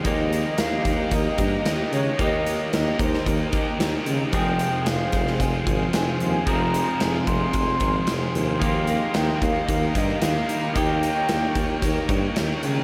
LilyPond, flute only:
\new Staff \with { instrumentName = "Flute" } { \time 4/4 \key ees \mixolydian \tempo 4 = 112 ees''4 f''4 ees''4. des''8 | ees''4 ees''8 c''8 bes'4 r4 | g''4 f''4 aes''4 aes''8 aes''8 | bes''4 aes''8 c'''2 r8 |
f''4 g''8 f''4 ees''8 f''4 | g''2. r4 | }